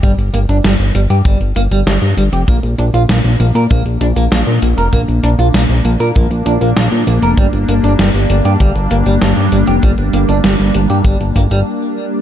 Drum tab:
HH |xxxxxxxxxxxxxxxx|xxxxxxxxxxxxxxxx|xxxxxxxxxxxxxxxx|xxxxxxxxxxxxxxxx|
SD |----o-------o---|----o-------o---|----o-------o---|----o-------o---|
BD |o-------o-------|o-------o-------|o-------o-------|o-------o-------|

HH |xxxxxxxxxxxx----|
SD |----o-----------|
BD |o-------o-o-----|